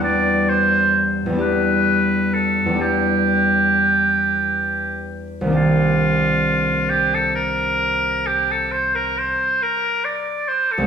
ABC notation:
X:1
M:12/8
L:1/16
Q:3/8=44
K:Em
V:1 name="Oboe"
d2 c3 z B4 A2 G8- G2 z2 | =F6 G A _B4 G A c B c2 B2 d2 c A |]
V:2 name="Harp"
[E,,G,B,DG]6 [E,,G,B,DG]6 [E,,G,B,DG]12 | [C,,_E,_B,DG]24 |]